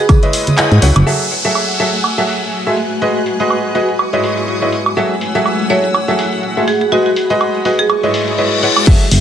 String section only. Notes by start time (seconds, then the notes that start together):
Already playing: B4
0.09 E4 D#6
1.07 A3 F#5 G#5 E6
2.77 B4 F#6
3.99 G#3 E4 C#6 D#6
4.97 A3 F#5 G#5 E6
6.68 G#4 B5
7.90 G#3 E4 B4 D#5 C#6
8.87 E5